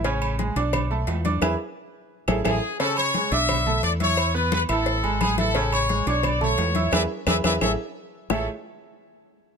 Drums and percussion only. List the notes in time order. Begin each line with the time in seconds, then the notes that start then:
0.04 cowbell, low agogo
0.22 high conga, low agogo, claves
0.39 cowbell, high conga
0.56 cowbell, high conga, low agogo
0.73 cowbell, high conga, low conga, low agogo, claves
0.91 high conga
1.07 cowbell, high conga, low timbale, low agogo
1.25 cowbell, high conga, low agogo
1.42 cowbell, high conga, high timbale, claves
2.28 cowbell, high conga, high timbale, claves
2.45 cowbell, high conga, high timbale, claves
2.80 cowbell, high conga, low agogo
2.97 high conga, low agogo, claves
3.14 cowbell, high conga
3.32 cowbell, high conga, low agogo
3.49 cowbell, high conga, low conga, low agogo, claves
3.66 high conga, low conga
3.83 cowbell, high conga, low agogo
4.00 cowbell, high conga, low agogo
4.17 cowbell, high conga, low agogo, claves
4.35 high conga
4.52 cowbell, high conga, low agogo
4.69 cowbell, high conga, low agogo, claves
4.86 cowbell, high conga
5.04 high conga, low agogo
5.21 cowbell, high conga, low agogo, claves
5.38 cowbell, high conga
5.55 cowbell, low agogo
5.72 high conga, low agogo, claves
5.89 cowbell, high conga
6.07 cowbell, high conga, low agogo
6.23 cowbell, high conga, low conga, low agogo, claves
6.41 high conga, low conga
6.58 cowbell, high conga, low timbale, low agogo
6.75 cowbell, high conga, low agogo
6.92 cowbell, high conga, high timbale, claves
7.27 cowbell, high conga, high timbale, claves
7.44 cowbell, high conga, high timbale, claves
7.61 cowbell, high conga, high timbale, claves
8.30 low bongo, low conga, low timbale, claves